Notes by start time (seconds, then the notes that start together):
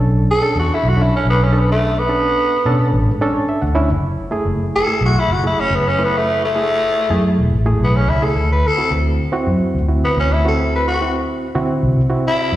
Already playing: C#4 D4 A4
0.00 B1
0.31 A4
0.42 C#4 D4 A4
0.56 E2 F#4
0.74 E4
0.83 B1
0.88 F#4
0.97 C#4 D4 A4
1.02 E4
1.16 C#4
1.25 B1
1.29 B3
1.44 C#4
1.53 C#4 D4 A4
1.59 B3
1.72 A3
1.99 B3
2.09 C#4 D4 A4
2.65 B2 C#4 D4 A4
2.93 A1
3.06 G#2
3.21 C#4 D4 A4
3.34 C#5
3.49 E5
3.62 D2 F#5
3.75 C#4 D4 E4
3.90 F#1
4.31 A3 E4 G#4
4.45 F#1
4.76 A4
4.87 A3 E4 G#4
5.01 B1
5.06 F#4
5.19 E4
5.28 F#1
5.33 F#4
5.44 A3 E4 G#4
5.60 C#4
5.70 F#1
5.76 B3
5.88 C#4
5.99 A3 E4 B4
6.04 B3
6.17 A3
6.45 A3
6.55 A3 E4 G#4
7.10 F#2 A3 E4 G#4
7.38 E1
7.51 A1
7.66 A3 E4 G#4
7.79 B1
7.84 B3
7.97 C#4
8.07 C#2 E4
8.22 A3 E4 G#4 A4
8.35 D2
8.53 B4
8.67 A4
8.77 C4 E4 F#4
8.91 D2
9.32 C4 E4 F#4
9.47 F#2
9.75 D2
9.88 C4 E4 F#4
10.05 B3
10.16 D2 C#4
10.33 E4
10.45 C4 E4 F#4 A4
10.76 B4
10.88 F#4
11.01 C4 E4 F#4
11.55 D3 C4 E4 F#4
11.83 C2
11.96 C3
12.10 C4 E4 F#4
12.28 E4
12.52 F#2